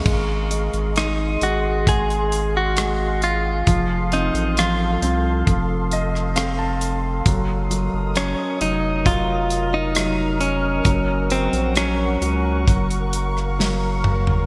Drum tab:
CC |x---------------|----------------|----------------|----------------|
HH |--xxx-x-xxx-x-x-|x-xxx-x-x-x-x-x-|x-x-x-x-x-x-x-x-|x-xxx-x-xxx-----|
SD |----r-------r---|----r------rr---|----r-------r---|----r------ro---|
T2 |----------------|----------------|----------------|--------------o-|
FT |----------------|----------------|----------------|---------------o|
BD |o-------o-------|o-------o-------|o-------o-------|o-------o-------|